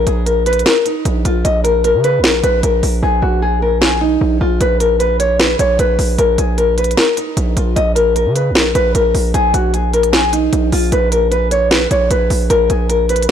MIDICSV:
0, 0, Header, 1, 4, 480
1, 0, Start_track
1, 0, Tempo, 394737
1, 1761, Time_signature, 4, 2, 24, 8
1, 16186, End_track
2, 0, Start_track
2, 0, Title_t, "Nylon-string guitar"
2, 0, Program_c, 0, 24
2, 89, Note_on_c, 0, 68, 81
2, 298, Note_off_c, 0, 68, 0
2, 315, Note_on_c, 0, 70, 75
2, 531, Note_off_c, 0, 70, 0
2, 567, Note_on_c, 0, 71, 80
2, 777, Note_off_c, 0, 71, 0
2, 797, Note_on_c, 0, 70, 86
2, 1012, Note_off_c, 0, 70, 0
2, 1044, Note_on_c, 0, 63, 78
2, 1494, Note_off_c, 0, 63, 0
2, 1521, Note_on_c, 0, 65, 81
2, 1734, Note_off_c, 0, 65, 0
2, 1757, Note_on_c, 0, 75, 84
2, 1972, Note_off_c, 0, 75, 0
2, 1993, Note_on_c, 0, 70, 74
2, 2209, Note_off_c, 0, 70, 0
2, 2246, Note_on_c, 0, 70, 80
2, 2457, Note_off_c, 0, 70, 0
2, 2482, Note_on_c, 0, 71, 92
2, 2694, Note_off_c, 0, 71, 0
2, 2721, Note_on_c, 0, 70, 78
2, 2934, Note_off_c, 0, 70, 0
2, 2961, Note_on_c, 0, 71, 87
2, 3174, Note_off_c, 0, 71, 0
2, 3203, Note_on_c, 0, 70, 74
2, 3654, Note_off_c, 0, 70, 0
2, 3679, Note_on_c, 0, 68, 87
2, 3893, Note_off_c, 0, 68, 0
2, 3914, Note_on_c, 0, 66, 77
2, 4130, Note_off_c, 0, 66, 0
2, 4162, Note_on_c, 0, 68, 76
2, 4374, Note_off_c, 0, 68, 0
2, 4404, Note_on_c, 0, 70, 78
2, 4615, Note_off_c, 0, 70, 0
2, 4634, Note_on_c, 0, 68, 87
2, 4850, Note_off_c, 0, 68, 0
2, 4877, Note_on_c, 0, 63, 77
2, 5330, Note_off_c, 0, 63, 0
2, 5361, Note_on_c, 0, 65, 83
2, 5574, Note_off_c, 0, 65, 0
2, 5608, Note_on_c, 0, 71, 84
2, 5818, Note_off_c, 0, 71, 0
2, 5842, Note_on_c, 0, 70, 69
2, 6055, Note_off_c, 0, 70, 0
2, 6073, Note_on_c, 0, 71, 82
2, 6290, Note_off_c, 0, 71, 0
2, 6318, Note_on_c, 0, 73, 86
2, 6532, Note_off_c, 0, 73, 0
2, 6560, Note_on_c, 0, 71, 74
2, 6773, Note_off_c, 0, 71, 0
2, 6804, Note_on_c, 0, 73, 80
2, 7015, Note_off_c, 0, 73, 0
2, 7048, Note_on_c, 0, 71, 70
2, 7496, Note_off_c, 0, 71, 0
2, 7520, Note_on_c, 0, 70, 88
2, 7734, Note_off_c, 0, 70, 0
2, 7770, Note_on_c, 0, 68, 82
2, 7979, Note_off_c, 0, 68, 0
2, 7997, Note_on_c, 0, 70, 78
2, 8211, Note_off_c, 0, 70, 0
2, 8248, Note_on_c, 0, 71, 81
2, 8458, Note_off_c, 0, 71, 0
2, 8476, Note_on_c, 0, 70, 90
2, 8691, Note_off_c, 0, 70, 0
2, 8724, Note_on_c, 0, 63, 79
2, 9174, Note_off_c, 0, 63, 0
2, 9201, Note_on_c, 0, 65, 83
2, 9414, Note_off_c, 0, 65, 0
2, 9436, Note_on_c, 0, 75, 84
2, 9651, Note_off_c, 0, 75, 0
2, 9672, Note_on_c, 0, 70, 75
2, 9889, Note_off_c, 0, 70, 0
2, 9925, Note_on_c, 0, 70, 82
2, 10136, Note_off_c, 0, 70, 0
2, 10162, Note_on_c, 0, 71, 92
2, 10374, Note_off_c, 0, 71, 0
2, 10401, Note_on_c, 0, 70, 77
2, 10614, Note_off_c, 0, 70, 0
2, 10640, Note_on_c, 0, 71, 90
2, 10853, Note_off_c, 0, 71, 0
2, 10883, Note_on_c, 0, 70, 76
2, 11333, Note_off_c, 0, 70, 0
2, 11358, Note_on_c, 0, 68, 87
2, 11572, Note_off_c, 0, 68, 0
2, 11594, Note_on_c, 0, 66, 76
2, 11810, Note_off_c, 0, 66, 0
2, 11843, Note_on_c, 0, 68, 75
2, 12055, Note_off_c, 0, 68, 0
2, 12083, Note_on_c, 0, 70, 75
2, 12295, Note_off_c, 0, 70, 0
2, 12313, Note_on_c, 0, 68, 91
2, 12529, Note_off_c, 0, 68, 0
2, 12557, Note_on_c, 0, 63, 75
2, 13010, Note_off_c, 0, 63, 0
2, 13043, Note_on_c, 0, 65, 85
2, 13255, Note_off_c, 0, 65, 0
2, 13287, Note_on_c, 0, 71, 82
2, 13497, Note_off_c, 0, 71, 0
2, 13523, Note_on_c, 0, 70, 69
2, 13735, Note_off_c, 0, 70, 0
2, 13755, Note_on_c, 0, 71, 82
2, 13970, Note_off_c, 0, 71, 0
2, 13998, Note_on_c, 0, 73, 89
2, 14212, Note_off_c, 0, 73, 0
2, 14240, Note_on_c, 0, 71, 74
2, 14453, Note_off_c, 0, 71, 0
2, 14484, Note_on_c, 0, 73, 83
2, 14695, Note_off_c, 0, 73, 0
2, 14727, Note_on_c, 0, 71, 70
2, 15175, Note_off_c, 0, 71, 0
2, 15200, Note_on_c, 0, 70, 91
2, 15413, Note_off_c, 0, 70, 0
2, 15448, Note_on_c, 0, 68, 82
2, 15658, Note_off_c, 0, 68, 0
2, 15675, Note_on_c, 0, 70, 78
2, 15891, Note_off_c, 0, 70, 0
2, 15926, Note_on_c, 0, 71, 82
2, 16137, Note_off_c, 0, 71, 0
2, 16186, End_track
3, 0, Start_track
3, 0, Title_t, "808-style bass"
3, 0, Program_c, 1, 38
3, 81, Note_on_c, 1, 34, 105
3, 773, Note_off_c, 1, 34, 0
3, 1281, Note_on_c, 1, 34, 108
3, 1511, Note_off_c, 1, 34, 0
3, 1521, Note_on_c, 1, 34, 103
3, 1751, Note_off_c, 1, 34, 0
3, 1761, Note_on_c, 1, 34, 110
3, 2361, Note_on_c, 1, 49, 99
3, 2379, Note_off_c, 1, 34, 0
3, 2661, Note_on_c, 1, 34, 99
3, 2680, Note_off_c, 1, 49, 0
3, 2946, Note_off_c, 1, 34, 0
3, 2961, Note_on_c, 1, 34, 104
3, 3191, Note_off_c, 1, 34, 0
3, 3201, Note_on_c, 1, 34, 111
3, 3431, Note_off_c, 1, 34, 0
3, 3441, Note_on_c, 1, 34, 107
3, 3671, Note_off_c, 1, 34, 0
3, 3681, Note_on_c, 1, 34, 113
3, 3911, Note_off_c, 1, 34, 0
3, 3921, Note_on_c, 1, 34, 108
3, 5073, Note_off_c, 1, 34, 0
3, 5121, Note_on_c, 1, 34, 106
3, 5351, Note_off_c, 1, 34, 0
3, 5361, Note_on_c, 1, 34, 102
3, 5592, Note_off_c, 1, 34, 0
3, 5601, Note_on_c, 1, 34, 116
3, 6753, Note_off_c, 1, 34, 0
3, 6800, Note_on_c, 1, 34, 105
3, 7031, Note_off_c, 1, 34, 0
3, 7041, Note_on_c, 1, 34, 111
3, 7272, Note_off_c, 1, 34, 0
3, 7281, Note_on_c, 1, 34, 104
3, 7511, Note_off_c, 1, 34, 0
3, 7520, Note_on_c, 1, 34, 114
3, 7751, Note_off_c, 1, 34, 0
3, 7761, Note_on_c, 1, 34, 108
3, 8452, Note_off_c, 1, 34, 0
3, 8960, Note_on_c, 1, 34, 110
3, 9191, Note_off_c, 1, 34, 0
3, 9201, Note_on_c, 1, 34, 104
3, 9431, Note_off_c, 1, 34, 0
3, 9441, Note_on_c, 1, 34, 108
3, 10040, Note_on_c, 1, 49, 96
3, 10059, Note_off_c, 1, 34, 0
3, 10341, Note_on_c, 1, 34, 98
3, 10359, Note_off_c, 1, 49, 0
3, 10626, Note_off_c, 1, 34, 0
3, 10641, Note_on_c, 1, 34, 109
3, 10871, Note_off_c, 1, 34, 0
3, 10881, Note_on_c, 1, 34, 103
3, 11111, Note_off_c, 1, 34, 0
3, 11121, Note_on_c, 1, 34, 103
3, 11351, Note_off_c, 1, 34, 0
3, 11360, Note_on_c, 1, 34, 115
3, 11591, Note_off_c, 1, 34, 0
3, 11600, Note_on_c, 1, 34, 110
3, 12753, Note_off_c, 1, 34, 0
3, 12801, Note_on_c, 1, 34, 108
3, 13031, Note_off_c, 1, 34, 0
3, 13041, Note_on_c, 1, 34, 103
3, 13272, Note_off_c, 1, 34, 0
3, 13281, Note_on_c, 1, 34, 118
3, 14433, Note_off_c, 1, 34, 0
3, 14481, Note_on_c, 1, 34, 104
3, 14711, Note_off_c, 1, 34, 0
3, 14721, Note_on_c, 1, 34, 108
3, 14951, Note_off_c, 1, 34, 0
3, 14961, Note_on_c, 1, 34, 105
3, 15191, Note_off_c, 1, 34, 0
3, 15201, Note_on_c, 1, 34, 117
3, 15431, Note_off_c, 1, 34, 0
3, 15441, Note_on_c, 1, 34, 105
3, 16132, Note_off_c, 1, 34, 0
3, 16186, End_track
4, 0, Start_track
4, 0, Title_t, "Drums"
4, 81, Note_on_c, 9, 42, 70
4, 203, Note_off_c, 9, 42, 0
4, 322, Note_on_c, 9, 42, 56
4, 443, Note_off_c, 9, 42, 0
4, 562, Note_on_c, 9, 42, 57
4, 642, Note_off_c, 9, 42, 0
4, 642, Note_on_c, 9, 42, 57
4, 722, Note_off_c, 9, 42, 0
4, 722, Note_on_c, 9, 42, 58
4, 801, Note_off_c, 9, 42, 0
4, 801, Note_on_c, 9, 38, 121
4, 801, Note_on_c, 9, 42, 78
4, 923, Note_off_c, 9, 38, 0
4, 923, Note_off_c, 9, 42, 0
4, 1041, Note_on_c, 9, 42, 86
4, 1163, Note_off_c, 9, 42, 0
4, 1281, Note_on_c, 9, 42, 80
4, 1403, Note_off_c, 9, 42, 0
4, 1521, Note_on_c, 9, 42, 72
4, 1643, Note_off_c, 9, 42, 0
4, 1761, Note_on_c, 9, 42, 73
4, 1883, Note_off_c, 9, 42, 0
4, 2001, Note_on_c, 9, 42, 71
4, 2123, Note_off_c, 9, 42, 0
4, 2241, Note_on_c, 9, 42, 56
4, 2363, Note_off_c, 9, 42, 0
4, 2481, Note_on_c, 9, 42, 66
4, 2603, Note_off_c, 9, 42, 0
4, 2721, Note_on_c, 9, 38, 120
4, 2721, Note_on_c, 9, 42, 81
4, 2843, Note_off_c, 9, 38, 0
4, 2843, Note_off_c, 9, 42, 0
4, 2961, Note_on_c, 9, 42, 78
4, 3083, Note_off_c, 9, 42, 0
4, 3201, Note_on_c, 9, 42, 81
4, 3323, Note_off_c, 9, 42, 0
4, 3442, Note_on_c, 9, 46, 57
4, 3563, Note_off_c, 9, 46, 0
4, 4641, Note_on_c, 9, 38, 118
4, 4762, Note_off_c, 9, 38, 0
4, 5601, Note_on_c, 9, 42, 75
4, 5723, Note_off_c, 9, 42, 0
4, 5841, Note_on_c, 9, 42, 73
4, 5963, Note_off_c, 9, 42, 0
4, 6081, Note_on_c, 9, 42, 60
4, 6202, Note_off_c, 9, 42, 0
4, 6321, Note_on_c, 9, 42, 67
4, 6442, Note_off_c, 9, 42, 0
4, 6561, Note_on_c, 9, 38, 121
4, 6561, Note_on_c, 9, 42, 83
4, 6682, Note_off_c, 9, 38, 0
4, 6683, Note_off_c, 9, 42, 0
4, 6801, Note_on_c, 9, 42, 78
4, 6923, Note_off_c, 9, 42, 0
4, 7041, Note_on_c, 9, 42, 81
4, 7162, Note_off_c, 9, 42, 0
4, 7281, Note_on_c, 9, 46, 56
4, 7403, Note_off_c, 9, 46, 0
4, 7521, Note_on_c, 9, 42, 75
4, 7642, Note_off_c, 9, 42, 0
4, 7761, Note_on_c, 9, 42, 72
4, 7882, Note_off_c, 9, 42, 0
4, 8001, Note_on_c, 9, 42, 57
4, 8122, Note_off_c, 9, 42, 0
4, 8241, Note_on_c, 9, 42, 58
4, 8321, Note_off_c, 9, 42, 0
4, 8321, Note_on_c, 9, 42, 55
4, 8401, Note_off_c, 9, 42, 0
4, 8401, Note_on_c, 9, 42, 60
4, 8481, Note_off_c, 9, 42, 0
4, 8481, Note_on_c, 9, 38, 119
4, 8481, Note_on_c, 9, 42, 83
4, 8602, Note_off_c, 9, 38, 0
4, 8602, Note_off_c, 9, 42, 0
4, 8721, Note_on_c, 9, 42, 84
4, 8843, Note_off_c, 9, 42, 0
4, 8962, Note_on_c, 9, 42, 82
4, 9083, Note_off_c, 9, 42, 0
4, 9201, Note_on_c, 9, 42, 71
4, 9323, Note_off_c, 9, 42, 0
4, 9441, Note_on_c, 9, 42, 77
4, 9563, Note_off_c, 9, 42, 0
4, 9681, Note_on_c, 9, 42, 70
4, 9802, Note_off_c, 9, 42, 0
4, 9921, Note_on_c, 9, 42, 59
4, 10042, Note_off_c, 9, 42, 0
4, 10161, Note_on_c, 9, 42, 66
4, 10282, Note_off_c, 9, 42, 0
4, 10401, Note_on_c, 9, 38, 119
4, 10401, Note_on_c, 9, 42, 81
4, 10522, Note_off_c, 9, 38, 0
4, 10522, Note_off_c, 9, 42, 0
4, 10641, Note_on_c, 9, 42, 76
4, 10763, Note_off_c, 9, 42, 0
4, 10881, Note_on_c, 9, 42, 81
4, 11003, Note_off_c, 9, 42, 0
4, 11121, Note_on_c, 9, 46, 57
4, 11243, Note_off_c, 9, 46, 0
4, 11361, Note_on_c, 9, 42, 77
4, 11483, Note_off_c, 9, 42, 0
4, 11601, Note_on_c, 9, 42, 73
4, 11722, Note_off_c, 9, 42, 0
4, 11841, Note_on_c, 9, 42, 59
4, 11962, Note_off_c, 9, 42, 0
4, 12081, Note_on_c, 9, 42, 43
4, 12201, Note_off_c, 9, 42, 0
4, 12201, Note_on_c, 9, 42, 73
4, 12320, Note_off_c, 9, 42, 0
4, 12320, Note_on_c, 9, 38, 118
4, 12320, Note_on_c, 9, 42, 80
4, 12442, Note_off_c, 9, 38, 0
4, 12442, Note_off_c, 9, 42, 0
4, 12561, Note_on_c, 9, 42, 83
4, 12682, Note_off_c, 9, 42, 0
4, 12801, Note_on_c, 9, 42, 78
4, 12922, Note_off_c, 9, 42, 0
4, 13041, Note_on_c, 9, 46, 56
4, 13162, Note_off_c, 9, 46, 0
4, 13281, Note_on_c, 9, 42, 76
4, 13402, Note_off_c, 9, 42, 0
4, 13521, Note_on_c, 9, 42, 71
4, 13642, Note_off_c, 9, 42, 0
4, 13760, Note_on_c, 9, 42, 58
4, 13882, Note_off_c, 9, 42, 0
4, 14000, Note_on_c, 9, 42, 70
4, 14122, Note_off_c, 9, 42, 0
4, 14240, Note_on_c, 9, 38, 120
4, 14240, Note_on_c, 9, 42, 80
4, 14361, Note_off_c, 9, 38, 0
4, 14362, Note_off_c, 9, 42, 0
4, 14481, Note_on_c, 9, 42, 76
4, 14602, Note_off_c, 9, 42, 0
4, 14721, Note_on_c, 9, 42, 82
4, 14842, Note_off_c, 9, 42, 0
4, 14961, Note_on_c, 9, 46, 56
4, 15082, Note_off_c, 9, 46, 0
4, 15201, Note_on_c, 9, 42, 76
4, 15322, Note_off_c, 9, 42, 0
4, 15441, Note_on_c, 9, 42, 72
4, 15563, Note_off_c, 9, 42, 0
4, 15681, Note_on_c, 9, 42, 60
4, 15803, Note_off_c, 9, 42, 0
4, 15921, Note_on_c, 9, 42, 57
4, 16001, Note_off_c, 9, 42, 0
4, 16001, Note_on_c, 9, 42, 57
4, 16082, Note_off_c, 9, 42, 0
4, 16082, Note_on_c, 9, 42, 61
4, 16186, Note_off_c, 9, 42, 0
4, 16186, End_track
0, 0, End_of_file